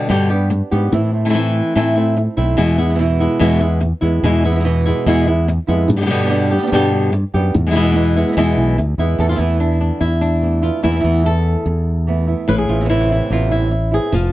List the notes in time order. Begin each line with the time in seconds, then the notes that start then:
0.09 G2 B2 D3 G3 B3 G4, muted nylon-string guitar stroke
0.30 G3 B3 D4 G4
0.50 muted nylon-string guitar stroke
0.71 G#2 G3 B3 D4 G4
0.92 A2 E3 A3 C4 E4, muted nylon-string guitar stroke
1.12 A3 C4 E4
1.25 E3 A3 C4 E4
1.29 E3 A3 C4 E4
1.33 E3 A3 C4 E4
1.75 A2 E3 A3 C4 E4, muted nylon-string guitar stroke
1.96 A3 C4 E4
2.17 muted nylon-string guitar stroke
2.37 B1 A3 C4 E4
2.57 E2 B2 E3 G#3 B3 E4, muted nylon-string guitar stroke
2.78 G#3 B3 E4
2.90 E3 G#3 B3 E4
2.94 E3 G#3 B3 E4, muted nylon-string guitar stroke
2.99 B2 E3 G#3 B3 E4
3.20 G#3 B3 E4
3.39 E2 B2 E3 G#3 B3 E4
3.60 G#3 B3 E4
3.82 muted nylon-string guitar stroke
4.01 E2 G#3 B3 E4
4.23 E2 B2 E3 G#3 B3 E4, muted nylon-string guitar stroke
4.43 G#3 B3 E4
4.51 E3 G#3 B3 E4
4.55 E3 G#3 B3 E4
4.59 E3 G#3 B3 E4
4.64 B2 E3 G#3 B3 E4, muted nylon-string guitar stroke
4.86 G#3 B3 E4
5.06 E2 B2 E3 G#3 B3 E4
5.26 G#3 B3 E4
5.47 muted nylon-string guitar stroke
5.67 F2 G#3 B3 E4
5.88 G2, muted nylon-string guitar stroke
5.96 D3 G3 B3 G4
6.01 D3 G3 B3 G4
6.06 D3 G3 B3 G4
6.10 B2 D3 G3 B3 G4
6.20 G3 B3 D4 G4
6.24 G3 B3 D4 G4
6.29 D3 G3 B3 D4 G4
6.51 G3 B3 G4
6.58 G3 B3 D4 G4
6.62 G3 B3 D4 G4
6.67 G3 B3 D4 G4
6.72 G2 B2 D3 G3 B3 D4 G4
6.91 B3 D4 G4
7.13 muted nylon-string guitar stroke
7.34 F#2 G3 B3 D4 G4
7.54 E2, muted nylon-string guitar stroke
7.67 E3 G#3 B3 E4
7.71 E3 G#3 B3 E4
7.75 B2 E3 G#3 B3 E4
7.82 E3 G#3 B3 E4
7.86 E3 G#3 B3 E4
7.90 E3 G#3 B3 E4
7.95 B2 E3 G#3 B3 E4
8.16 G#3 B3 E4
8.27 E3 G#3 B3 E4
8.32 E3 G#3 B3 E4
8.37 E2 B2 E3 G#3 B3 E4
8.57 B1 G#3 B3 E4
8.77 D2, muted nylon-string guitar stroke
8.98 E2 G#3 B3 E4
9.18 E2 E3 A3 B3 E4 A4
9.29 E3 A3 B3 E4 F4
9.34 E3 A3 B3 E4
9.39 E2 E3 A3 B3 E4
9.60 A3 B3 D4 E4
9.71 E4
9.81 D4
10.01 E2 E4, muted nylon-string guitar stroke
10.21 D4
10.41 E3 A3 B3 E4
10.62 A3 B3 E4 F4
10.82 E2 E3 A3 B3 E4
10.91 E3 A3 B3 E4
10.95 E3 A3 B3 E4
11.00 E3 A3 B3 E4
11.04 E2 E3 A3 B3 E4
11.24 A3 B3 E4 A4
11.66 E2, muted nylon-string guitar stroke
12.07 E3 A3 B3 E4
12.27 A3 B3 E4
12.48 A1 A2 B4, muted nylon-string guitar stroke
12.58 G#4
12.69 A1 B3 C4 E4 F4
12.80 E3 B3 C4 E4
12.84 E3 B3 C4 E4
12.89 C3 E3 B3 C4 E4
13.01 F4
13.12 E4
13.30 A1 C3 E3 B3 C4 E4 F4
13.51 E4
13.71 muted nylon-string guitar stroke
13.91 B3 C4 E4 G#4
14.12 F1 F3 F4, muted nylon-string guitar stroke